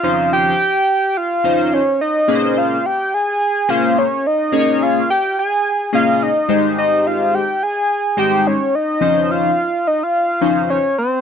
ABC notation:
X:1
M:4/4
L:1/16
Q:"Swing 16ths" 1/4=107
K:Bbdor
V:1 name="Analog synth lead"
f2 g6 f4 d2 e2- | e2 f2 g2 a4 f2 d2 e2- | e2 f2 g2 a4 f2 e3 z | e2 f2 g2 a4 g2 d2 e2- |
e2 f4 e f4- f d2 c2 |]
V:2 name="Analog polysynth"
[F,DEc]4 z6 [F,DEc]2 z4 | [B,DA_c=c]4 z6 [B,DAc]2 z4 | [B,DAd]4 z6 [B,DAe]2 z2 [A,EGc]2- | [A,EGc]4 z6 [A,EGc]2 z4 |
[F,DEc]4 z6 [F,DEc]2 z4 |]